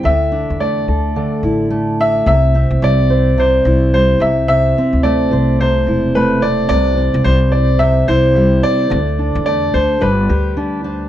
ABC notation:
X:1
M:4/4
L:1/16
Q:"Swing 16ths" 1/4=108
K:C
V:1 name="Upright piano"
e4 d6 z4 e2 | e4 d4 c4 c2 e2 | e4 d4 c4 B2 d2 | d4 c2 d2 e2 c4 d2- |
d4 d2 c2 B6 z2 |]
V:2 name="Steel-string acoustic guitar"
D,2 D2 A,2 A2 D,2 E2 A,2 D2 | C,2 C2 G,2 c2 C,2 E2 G,2 C,2 | C,2 C2 A,2 c2 C,2 E2 A,2 C2 | C,2 C2 G,2 c2 C,2 E2 G,2 C2 |
D,2 D2 A,2 A2 G,2 G2 D2 D2 |]
V:3 name="Upright bass" clef=bass
D,,3 E,,3 D,,4 A,,,6 | C,,3 C,, C,,6 C,,4 C,,2- | C,,2 z D,,3 C,,4 E,,,6 | C,,3 C,, C,,6 C,,4 z2 |
D,,3 E,,3 D,,2 G,,,2 D,,6 |]